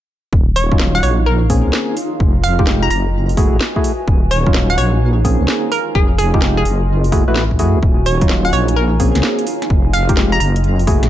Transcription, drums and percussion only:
0.33 kick loud
0.56 open hi-hat loud
0.72 kick loud
0.79 snare loud
0.95 open hi-hat medium
1.03 open hi-hat loud
1.50 kick medium
1.50 open hi-hat loud
1.73 snare loud
1.97 open hi-hat loud
2.20 kick loud
2.44 open hi-hat loud
2.59 kick loud
2.67 snare loud
2.90 open hi-hat loud
3.29 open hi-hat medium
3.37 kick loud
3.37 open hi-hat loud
3.61 snare loud
3.76 kick medium
3.84 open hi-hat loud
4.08 kick loud
4.31 open hi-hat loud
4.46 kick loud
4.54 snare loud
4.70 open hi-hat medium
4.78 open hi-hat medium
5.25 kick medium
5.25 open hi-hat loud
5.48 snare loud
5.72 open hi-hat medium
5.95 kick loud
6.18 open hi-hat loud
6.34 kick loud
6.42 snare loud
6.65 open hi-hat medium
7.04 open hi-hat medium
7.12 kick loud
7.12 open hi-hat medium
7.36 snare loud
7.51 kick medium
7.59 open hi-hat medium
7.83 kick loud
8.06 open hi-hat loud
8.21 kick loud
8.21 closed hi-hat medium
8.29 snare loud
8.45 open hi-hat medium
8.53 open hi-hat medium
8.68 closed hi-hat medium
9.00 kick medium
9.00 open hi-hat medium
9.15 snare soft
9.15 closed hi-hat medium
9.23 snare loud
9.39 closed hi-hat soft
9.47 open hi-hat loud
9.62 snare soft
9.62 closed hi-hat medium
9.70 kick loud
9.93 open hi-hat loud
10.09 kick loud
10.09 closed hi-hat medium
10.17 snare loud
10.40 open hi-hat loud
10.56 closed hi-hat medium
10.64 closed hi-hat soft
10.79 open hi-hat medium
10.87 kick medium
10.87 open hi-hat loud
11.03 snare soft
11.03 closed hi-hat medium

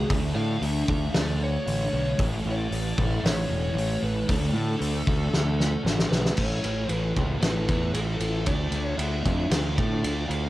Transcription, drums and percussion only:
0.10 kick loud
0.10 open hi-hat medium
0.62 open hi-hat medium
0.88 kick medium
1.14 snare loud
1.14 open hi-hat medium
1.67 open hi-hat medium
2.19 kick loud
2.19 open hi-hat medium
2.72 open hi-hat medium
2.98 kick medium
3.25 snare loud
3.25 open hi-hat medium
3.78 open hi-hat medium
4.29 kick loud
4.29 open hi-hat medium
4.81 open hi-hat medium
5.07 kick medium
5.34 snare medium
5.60 snare medium
5.86 snare medium
5.99 snare medium
6.12 snare loud
6.25 snare loud
6.37 kick medium
6.37 crash medium
6.64 ride medium
6.89 ride medium
7.16 kick medium
7.16 ride medium
7.42 snare loud
7.42 ride medium
7.68 kick medium
7.68 ride medium
7.94 ride medium
8.20 ride medium
8.46 kick medium
8.46 ride medium
8.72 ride medium
8.99 ride medium
9.25 kick medium
9.25 ride medium
9.51 snare loud
9.51 ride loud
9.78 kick medium
9.78 ride medium
10.04 ride medium
10.31 ride medium

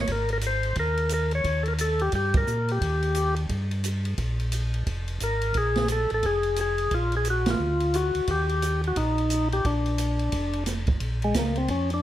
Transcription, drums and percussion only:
0.07 kick soft
0.07 ride medium
0.29 ride soft
0.41 hi-hat pedal soft
0.41 ride medium
0.63 ride soft
0.75 kick soft
0.75 ride medium
0.97 ride soft
1.09 hi-hat pedal soft
1.09 ride medium
1.31 ride soft
1.44 kick soft
1.44 ride medium
1.66 ride soft
1.78 hi-hat pedal medium
1.78 ride medium
1.99 ride soft
2.12 kick soft
2.12 ride medium
2.34 kick medium
2.34 ride medium
2.47 hi-hat pedal medium
2.68 ride soft
2.82 kick soft
2.82 ride medium
3.02 ride soft
3.15 hi-hat pedal medium
3.15 ride medium
3.36 ride soft
3.49 kick soft
3.49 ride medium
3.71 ride soft
3.84 hi-hat pedal medium
3.84 ride medium
4.05 ride soft
4.18 kick soft
4.18 ride medium
4.40 ride soft
4.52 hi-hat pedal soft
4.52 ride medium
4.74 ride soft
4.87 kick soft
4.87 ride medium
5.08 ride soft
5.20 hi-hat pedal medium
5.20 ride medium
5.41 ride soft
5.54 kick soft
5.54 ride medium
5.76 snare soft
5.76 ride soft
5.88 hi-hat pedal medium
5.88 ride medium
6.10 ride soft
6.23 kick soft
6.23 ride medium
6.43 ride soft
6.56 hi-hat pedal soft
6.56 ride medium
6.78 ride soft
6.91 kick soft
6.91 ride medium
7.12 ride soft
7.25 hi-hat pedal medium
7.25 ride medium
7.46 snare medium
7.46 ride medium
7.80 ride soft
7.94 hi-hat pedal medium
7.94 ride medium
8.15 ride soft
8.27 kick soft
8.27 ride medium
8.49 ride soft
8.62 hi-hat pedal medium
8.62 ride medium
8.84 ride soft
8.96 kick soft
8.96 ride medium
9.18 ride soft
9.30 hi-hat pedal medium
9.30 ride medium
9.52 ride soft
9.65 kick soft
9.65 ride medium
9.86 ride soft
9.98 hi-hat pedal medium
9.98 ride medium
10.19 ride soft
10.32 kick soft
10.32 ride medium
10.53 ride soft
10.66 snare soft
10.66 hi-hat pedal medium
10.66 ride medium
10.87 kick medium
10.87 ride soft
11.00 kick soft
11.00 ride medium
11.22 ride soft
11.34 kick soft
11.34 snare medium
11.34 hi-hat pedal medium
11.34 ride medium
11.56 ride soft
11.68 kick soft
11.68 ride medium
11.90 ride soft

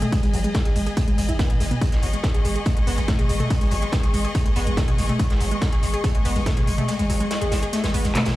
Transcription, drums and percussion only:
0.02 closed hi-hat medium
0.02 mid tom medium
0.12 kick loud
0.12 closed hi-hat medium
0.23 closed hi-hat soft
0.34 closed hi-hat medium
0.34 open hi-hat loud
0.44 closed hi-hat medium
0.54 kick loud
0.54 snare loud
0.54 closed hi-hat medium
0.65 closed hi-hat medium
0.76 closed hi-hat medium
0.76 open hi-hat loud
0.86 closed hi-hat soft
0.86 closed hi-hat medium
0.97 kick loud
0.97 closed hi-hat medium
1.08 closed hi-hat soft
1.18 closed hi-hat medium
1.18 open hi-hat loud
1.29 closed hi-hat medium
1.39 kick loud
1.39 snare loud
1.39 closed hi-hat medium
1.39 mid tom medium
1.50 closed hi-hat medium
1.50 mid tom medium
1.60 snare soft
1.60 closed hi-hat medium
1.60 open hi-hat loud
1.71 closed hi-hat soft
1.71 mid tom medium
1.81 kick loud
1.81 closed hi-hat medium
1.92 snare soft
1.92 closed hi-hat soft
2.03 closed hi-hat medium
2.03 open hi-hat loud
2.13 closed hi-hat medium
2.23 kick loud
2.23 snare loud
2.23 closed hi-hat medium
2.34 closed hi-hat soft
2.45 closed hi-hat medium
2.45 open hi-hat loud
2.56 closed hi-hat medium
2.66 kick loud
2.66 closed hi-hat medium
2.77 closed hi-hat soft
2.87 closed hi-hat medium
2.87 open hi-hat loud
2.98 closed hi-hat soft
2.98 closed hi-hat medium
3.08 kick loud
3.08 snare loud
3.08 closed hi-hat medium
3.08 mid tom medium
3.19 closed hi-hat medium
3.19 mid tom medium
3.29 closed hi-hat medium
3.29 open hi-hat loud
3.40 closed hi-hat soft
3.40 mid tom medium
3.50 kick loud
3.50 closed hi-hat medium
3.61 closed hi-hat soft
3.71 closed hi-hat medium
3.71 open hi-hat loud
3.82 closed hi-hat medium
3.92 kick loud
3.92 snare loud
3.92 closed hi-hat medium
4.03 closed hi-hat soft
4.14 closed hi-hat medium
4.14 open hi-hat loud
4.24 closed hi-hat soft
4.35 kick loud
4.35 closed hi-hat medium
4.46 closed hi-hat soft
4.56 closed hi-hat medium
4.56 open hi-hat loud
4.67 closed hi-hat medium
4.77 kick loud
4.77 snare loud
4.77 closed hi-hat medium
4.77 mid tom medium
4.88 closed hi-hat medium
4.88 mid tom medium
4.98 snare soft
4.98 closed hi-hat medium
4.98 open hi-hat loud
5.09 closed hi-hat soft
5.09 mid tom medium
5.19 kick loud
5.19 closed hi-hat loud
5.19 closed hi-hat medium
5.30 snare soft
5.30 closed hi-hat medium
5.40 closed hi-hat medium
5.40 open hi-hat loud
5.51 closed hi-hat medium
5.61 kick loud
5.61 snare loud
5.61 closed hi-hat medium
5.72 closed hi-hat medium
5.83 closed hi-hat medium
5.83 open hi-hat loud
5.94 closed hi-hat medium
6.04 kick loud
6.04 closed hi-hat medium
6.04 closed hi-hat loud
6.15 closed hi-hat medium
6.25 closed hi-hat medium
6.25 open hi-hat loud
6.36 closed hi-hat soft
6.46 kick loud
6.46 snare loud
6.46 closed hi-hat medium
6.46 mid tom loud
6.57 closed hi-hat medium
6.57 mid tom medium
6.67 closed hi-hat medium
6.67 open hi-hat medium
6.78 closed hi-hat soft
6.78 mid tom medium
6.88 closed hi-hat medium
6.88 closed hi-hat loud
6.99 closed hi-hat medium
6.99 closed hi-hat soft
7.10 closed hi-hat medium
7.10 open hi-hat loud
7.20 closed hi-hat medium
7.31 snare loud
7.31 closed hi-hat medium
7.31 closed hi-hat loud
7.41 closed hi-hat medium
7.51 snare loud
7.51 closed hi-hat medium
7.51 open hi-hat loud
7.63 closed hi-hat medium
7.73 snare soft
7.73 closed hi-hat loud
7.73 closed hi-hat medium
7.84 snare loud
7.84 closed hi-hat medium
7.94 open hi-hat loud
8.04 snare soft
8.04 closed hi-hat medium
8.15 snare loud
8.15 clap loud
8.15 closed hi-hat medium
8.15 mid tom medium
8.25 snare loud
8.25 closed hi-hat medium
8.25 mid tom medium

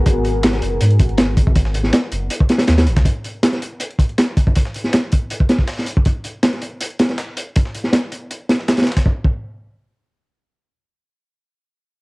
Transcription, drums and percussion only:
0.06 kick loud
0.06 closed hi-hat medium
0.24 closed hi-hat medium
0.43 snare loud
0.43 closed hi-hat medium
0.52 snare medium
0.52 closed hi-hat soft
0.62 closed hi-hat medium
0.81 closed hi-hat medium
0.90 closed hi-hat soft
0.99 kick medium
0.99 closed hi-hat medium
1.09 closed hi-hat soft
1.18 snare loud
1.18 closed hi-hat medium
1.37 kick medium
1.37 closed hi-hat medium
1.47 kick medium
1.56 kick loud
1.56 closed hi-hat medium
1.65 snare medium
1.74 closed hi-hat medium
1.84 snare soft
1.93 snare loud
1.93 closed hi-hat medium
2.12 closed hi-hat medium
2.30 closed hi-hat medium
2.41 kick medium
2.49 snare medium
2.49 closed hi-hat medium
2.59 snare loud
2.59 snare soft
2.59 closed hi-hat medium
2.67 snare loud
2.67 closed hi-hat medium
2.78 snare soft
2.78 snare loud
2.78 closed hi-hat medium
2.87 closed hi-hat medium
2.96 kick medium
2.96 snare loud
2.96 closed hi-hat medium
3.05 kick loud
3.05 closed hi-hat medium
3.24 closed hi-hat medium
3.43 snare loud
3.43 closed hi-hat medium
3.53 snare medium
3.53 closed hi-hat soft
3.62 closed hi-hat medium
3.80 closed hi-hat medium
3.91 closed hi-hat soft
3.99 kick medium
3.99 closed hi-hat medium
4.09 closed hi-hat soft
4.18 snare loud
4.18 closed hi-hat medium
4.37 kick medium
4.37 closed hi-hat medium
4.47 kick loud
4.55 kick loud
4.55 closed hi-hat medium
4.65 snare medium
4.74 closed hi-hat medium
4.84 snare soft
4.93 snare loud
4.93 closed hi-hat medium
5.12 kick medium
5.12 closed hi-hat medium
5.30 closed hi-hat medium
5.40 kick medium
5.49 snare loud
5.49 closed hi-hat medium
5.59 kick medium
5.59 snare soft
5.68 snare loud
5.68 closed hi-hat medium
5.68 open hi-hat medium
5.78 snare soft
5.87 closed hi-hat medium
5.97 kick medium
6.05 kick loud
6.05 closed hi-hat medium
6.24 closed hi-hat medium
6.43 snare loud
6.43 closed hi-hat medium
6.53 snare soft
6.53 closed hi-hat soft
6.62 closed hi-hat medium
6.81 closed hi-hat medium
6.90 closed hi-hat soft
6.99 snare loud
6.99 closed hi-hat medium
7.09 snare medium
7.09 closed hi-hat soft
7.18 snare loud
7.18 closed hi-hat medium
7.37 closed hi-hat medium
7.56 kick loud
7.56 closed hi-hat medium
7.65 snare medium
7.75 closed hi-hat medium
7.84 snare soft
7.93 snare loud
7.93 closed hi-hat medium
8.12 closed hi-hat medium
8.31 closed hi-hat medium
8.49 snare medium
8.49 closed hi-hat medium
8.59 snare soft
8.68 snare loud
8.68 closed hi-hat medium
8.77 snare medium
8.77 snare soft
8.77 closed hi-hat medium
8.82 snare medium
8.82 closed hi-hat medium
8.87 snare medium
8.87 closed hi-hat medium
8.92 snare medium
8.92 closed hi-hat medium
8.97 kick medium
8.97 snare loud
8.97 closed hi-hat medium
9.06 kick loud
9.25 kick loud

